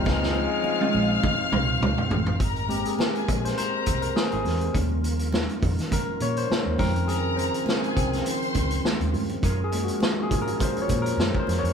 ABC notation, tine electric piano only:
X:1
M:4/4
L:1/16
Q:"Swing 16ths" 1/4=102
K:Ab
V:1 name="Tine electric piano"
[F,A,CE]12- [F,A,CE]2 z2 | z2 G A B3 c c3 B A A2 z | z8 B2 d c3 B2 | A2 c4 z8 z2 |
(3B2 A2 _G2 (3F2 A2 B2 (3c2 d2 B2- (3B2 c2 d2 |]
V:2 name="Tine electric piano" clef=bass
z16 | z2 [A,B,C]12- [A,B,C]2 | [F,G,D]2 z12 [E,F,C]2- | [E,F,C]4 z2 [E,F,C]2 z8 |
z2 [F,A,B,]12- [F,A,B,]2 |]